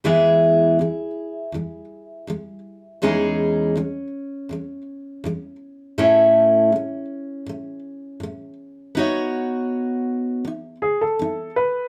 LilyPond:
<<
  \new Staff \with { instrumentName = "Upright piano" } { \time 4/4 \key e \major \tempo 4 = 81 r1 | r1 | r1 | r2 r8 gis'16 a'8. b'8 | }
  \new Staff \with { instrumentName = "Steel-string acoustic guitar" } { \clef bass \time 4/4 \key e \major <e, e gis b e' gis'>4 <e, e gis>8 r8 <e, e gis>8 r8 <e, e gis>8 r8 | <e, e gis cis' dis' gis'>4 <e, e gis>8 r8 <e, e gis>8 r8 <e, e gis>8 r8 | <a, a cis' e' a'>4 <a, a>8 r8 <a, a>8 r8 <a, a>8 r8 | <b dis' fis' cis''>2 <b dis'>8 r8 <b dis'>8 r8 | }
>>